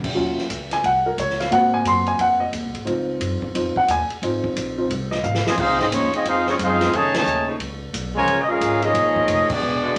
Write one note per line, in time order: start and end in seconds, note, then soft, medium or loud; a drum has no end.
0.00 0.15 B1 medium
0.00 0.13 D3 medium
0.00 0.13 F#3 soft
0.00 0.13 G#3 soft
0.00 0.13 C#4 medium
0.04 kick medium
0.04 crash medium
0.15 0.49 D#2 medium
0.15 0.41 F#3 medium
0.15 0.41 C#4 soft
0.15 0.42 F4 medium
0.15 kick soft
0.38 snare soft
0.50 0.83 C#2 medium
0.50 kick soft
0.50 hi-hat pedal medium
0.50 ride medium
0.71 0.84 G#5 medium
0.71 snare soft
0.71 ride medium
0.84 1.17 C2 medium
0.84 1.06 F#5 medium
0.84 kick soft
0.84 ride medium
1.06 1.18 A#4 medium
1.18 1.51 C#2 medium
1.18 1.40 C#5 medium
1.18 kick soft
1.18 hi-hat pedal medium
1.18 ride medium
1.30 snare soft
1.40 1.52 F5 medium
1.40 snare medium
1.40 ride medium
1.50 1.84 G#2 medium
1.50 2.82 A#3 medium
1.50 2.83 C4 soft
1.50 2.83 F#4 medium
1.50 1.73 F#5 medium
1.50 kick soft
1.50 ride medium
1.74 1.86 G#5 medium
1.85 2.18 F#2 medium
1.85 2.08 C6 loud
1.85 kick soft
1.85 hi-hat pedal medium
1.85 ride medium
2.06 2.19 G#5 medium
2.06 ride medium
2.19 2.52 F2 medium
2.19 2.41 F#5 medium
2.19 kick soft
2.19 ride medium
2.40 2.48 D#5 medium
2.53 2.65 D#2 loud
2.53 kick soft
2.53 hi-hat pedal medium
2.53 ride medium
2.64 2.73 C2 medium
2.74 2.85 G#1 medium
2.74 ride medium
2.85 3.19 C#2 medium
2.85 3.54 C4 medium
2.85 3.54 D#4 soft
2.85 3.54 F4 medium
2.85 kick soft
2.85 ride medium
3.20 3.40 F#2 medium
3.20 kick soft
3.20 hi-hat pedal medium
3.20 ride medium
3.42 kick medium
3.55 3.75 F2 loud
3.55 3.74 C4 soft
3.55 3.75 D#4 soft
3.55 3.75 F4 medium
3.55 kick soft
3.55 ride medium
3.76 3.89 F#5 medium
3.76 muted upright bass stroke soft
3.76 kick medium
3.88 4.08 D#2 loud
3.88 4.21 G#5 medium
3.88 kick soft
3.88 hi-hat pedal medium
3.88 ride medium
4.10 ride medium
4.22 4.42 G#1 medium
4.22 4.77 C4 medium
4.22 4.77 D#4 medium
4.22 4.76 F4 medium
4.22 kick soft
4.22 ride medium
4.43 muted upright bass stroke soft
4.43 kick medium
4.56 4.89 A#1 loud
4.56 kick soft
4.56 hi-hat pedal medium
4.56 ride medium
4.78 4.89 C4 soft
4.78 4.89 D#4 soft
4.78 4.89 F4 medium
4.90 5.23 C2 loud
4.90 kick soft
4.90 ride medium
5.11 5.23 D#5 medium
5.11 snare medium
5.23 5.44 G#1 loud
5.23 5.49 F5 medium
5.23 hi-hat pedal medium
5.35 snare medium
5.46 5.58 C3 medium
5.46 5.58 F3 medium
5.46 5.58 G#3 medium
5.46 5.58 F4 medium
5.46 5.58 C5 medium
5.46 5.58 D#5 medium
5.46 5.58 G#5 medium
5.46 muted upright bass stroke soft
5.46 snare loud
5.58 5.69 C#2 medium
5.58 5.79 G#3 medium
5.58 5.79 C4 medium
5.58 5.81 D#4 medium
5.58 5.80 F4 medium
5.58 5.80 G#4 medium
5.58 5.80 C5 medium
5.58 5.80 F5 loud
5.58 kick medium
5.58 crash medium
5.69 5.79 C2 medium
5.79 5.90 G#1 medium
5.79 6.23 C#3 loud
5.79 6.23 F3 medium
5.79 5.86 G#3 medium
5.79 6.23 C4 loud
5.79 5.85 C4 medium
5.79 5.86 C4 medium
5.79 6.23 D#4 loud
5.79 5.86 D#4 medium
5.79 5.86 F4 medium
5.79 5.86 G#4 medium
5.79 5.86 D#5 medium
5.79 snare soft
5.92 6.11 D#2 loud
5.92 6.12 F3 medium
5.92 6.12 G#3 medium
5.92 6.12 C#4 medium
5.92 6.13 D#4 medium
5.92 6.12 F4 medium
5.92 6.13 C#5 medium
5.92 kick soft
5.92 hi-hat pedal medium
5.92 ride medium
6.13 6.25 G#3 medium
6.13 6.25 C4 medium
6.13 6.26 C4 medium
6.13 6.25 D#4 medium
6.13 6.26 F4 medium
6.13 6.26 G#4 medium
6.13 6.26 D#5 medium
6.13 muted upright bass stroke soft
6.13 ride medium
6.25 6.58 F2 medium
6.25 6.46 G#3 medium
6.25 6.46 C4 medium
6.25 6.47 D#4 medium
6.25 6.46 F4 medium
6.25 6.47 G#4 medium
6.25 6.47 C5 medium
6.25 6.47 F5 loud
6.25 kick soft
6.25 ride medium
6.47 6.90 C#3 loud
6.47 6.90 F3 loud
6.47 6.53 F3 medium
6.47 6.54 G#3 medium
6.47 6.55 G#3 medium
6.47 6.90 C4 loud
6.47 6.54 C#4 medium
6.47 6.55 D#4 medium
6.47 6.90 F4 loud
6.47 6.55 F4 medium
6.47 6.55 C#5 medium
6.47 snare soft
6.59 6.91 F#2 loud
6.59 6.92 G#3 medium
6.59 6.92 C4 medium
6.59 6.92 F4 medium
6.59 kick soft
6.59 hi-hat pedal medium
6.59 ride medium
6.63 6.93 D#4 medium
6.63 6.93 G#4 medium
6.63 6.93 C5 medium
6.63 6.93 F5 loud
6.81 snare medium
6.81 ride medium
6.93 7.25 F2 medium
6.93 7.15 C#3 loud
6.93 7.15 D#3 loud
6.93 7.15 A3 loud
6.93 7.16 D#4 loud
6.93 7.16 G#4 loud
6.93 7.16 C#5 loud
6.93 7.15 A5 loud
6.93 kick soft
6.93 ride medium
7.14 7.46 C#3 medium
7.14 7.47 D#3 medium
7.14 7.47 A3 medium
7.14 7.48 C#5 medium
7.14 7.47 G#5 medium
7.14 7.47 A5 loud
7.14 snare medium
7.14 ride medium
7.19 7.48 D#4 medium
7.26 7.59 D#2 medium
7.26 hi-hat pedal medium
7.47 7.56 C#3 loud
7.47 7.55 F3 medium
7.47 7.56 A3 medium
7.47 7.56 D#4 loud
7.60 7.93 C#2 loud
7.60 kick soft
7.60 ride medium
7.93 8.26 B1 loud
7.93 kick soft
7.93 hi-hat pedal medium
7.93 ride medium
8.15 8.38 C#3 loud
8.15 8.38 F3 loud
8.15 8.38 G#3 loud
8.15 8.39 F4 loud
8.15 8.39 A#4 loud
8.15 8.39 C#5 loud
8.15 8.39 G#5 loud
8.27 8.60 A#1 medium
8.27 kick soft
8.27 ride medium
8.42 8.50 D#5 medium
8.48 8.82 G#3 loud
8.48 8.82 C#4 medium
8.48 8.83 C#4 medium
8.48 8.82 F4 medium
8.48 8.83 G#4 loud
8.48 8.83 A#4 medium
8.48 8.83 F5 loud
8.60 8.93 G#1 loud
8.60 kick soft
8.60 hi-hat pedal medium
8.60 ride medium
8.82 8.91 C#3 loud
8.82 9.50 F3 medium
8.82 9.50 G#3 medium
8.82 8.91 G#3 medium
8.82 8.91 A#3 loud
8.82 9.51 C#4 medium
8.82 9.50 D#4 medium
8.82 8.91 F4 loud
8.82 9.51 G#4 medium
8.82 9.51 A#4 medium
8.82 9.51 D#5 loud
8.82 ride medium
8.94 9.27 A#1 loud
8.94 kick soft
8.94 ride medium
9.16 kick medium
9.28 9.48 F1 loud
9.28 kick soft
9.28 hi-hat pedal medium
9.28 ride medium
9.50 9.98 G#3 medium
9.50 9.98 B3 medium
9.50 9.98 D4 medium
9.50 9.98 F#4 medium
9.50 9.98 G#4 medium
9.50 9.98 D5 medium
9.50 muted upright bass stroke soft
9.50 kick loud
9.50 crash loud
9.62 9.95 E1 medium
9.83 9.98 D3 loud
9.83 9.98 G#3 loud
9.83 9.98 D4 loud
9.83 9.98 F#4 loud